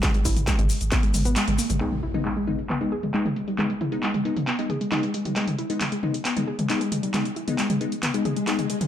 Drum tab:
HH |xxoxxxoxxxoxxxox|-xxxxx-xxx-xxxxx|xxxxxxxxxxxxxxxx|xxxxxx-xxx-xxxxx|
SH |x-xxx-xxx-xxx-xx|----------------|----------------|----------------|
CP |x---x---x---x---|x---x---x---x---|x---x---x---x---|x---x---x---x---|
T2 |o--o-o--o-o--o-o|-o-o--o-o--o-o--|o-o--o-o--o-o--o|-o--o-o--o-o--o-|
BD |o-o-o---o-------|----------------|----------------|----------------|

HH |xxxxxxxxxxxxxxxx|
SH |----------------|
CP |x---x---x---x---|
T2 |o--o-o--o-o--o-o|
BD |----------------|